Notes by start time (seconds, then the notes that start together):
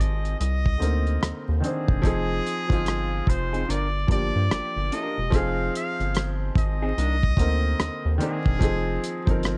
Already playing: F3 C4 D#4 G#4
0.00 G#1 D#5, closed hi-hat
0.25 closed hi-hat
0.40 C2 D#5, closed hi-hat
0.66 kick
0.78 D2 D3 A#3 C4, closed hi-hat
0.83 D#4 A#4
1.07 closed hi-hat
1.23 D#2, cross-stick, closed hi-hat
1.48 D#2
1.60 D#3 C4 D4 G#4, closed hi-hat
1.65 C5
1.88 E1, kick
2.02 F1 F3 C4 D#4, kick, closed hi-hat
2.07 G#4
2.47 closed hi-hat
2.68 G1 F3 C4 D#4, kick
2.72 F4, closed hi-hat
2.86 cross-stick, closed hi-hat
3.27 F1 C5, kick, closed hi-hat
3.53 C4 D#4 G#4, closed hi-hat
3.68 G1 D4 F4 A#4 D5, closed hi-hat
4.07 G1 F3 A#3 D4, kick, closed hi-hat
4.12 G4 D5
4.36 G2
4.51 G1, muted clean electric guitar stroke, cross-stick, closed hi-hat
4.76 G1
4.92 D4 F4 A#4 D#5, closed hi-hat
5.18 E1
5.30 F1 F3 C4 D#4, kick, closed hi-hat
5.35 G#4 F5
5.75 F5, closed hi-hat
6.00 G1, closed hi-hat
6.15 cross-stick, closed hi-hat
6.56 G#1 D#5, kick, closed hi-hat
6.82 C4 D#4 G#4
6.98 C2 D#3 A#3 D4, closed hi-hat
7.23 kick
7.36 D2 D3 A#3 C4, kick, closed hi-hat
7.41 D#4 A#4
7.80 D#2, muted clean electric guitar stroke, cross-stick, closed hi-hat
8.05 D#2
8.18 D#3 A#3 C4 D4, closed hi-hat
8.23 G#4 A#4
8.46 E1, kick
8.59 F1 F3 C4 D#4, kick, closed hi-hat
8.64 G#4
9.04 closed hi-hat
9.26 G1 F3 C4 D#4, kick, closed hi-hat
9.31 A#4
9.43 cross-stick, closed hi-hat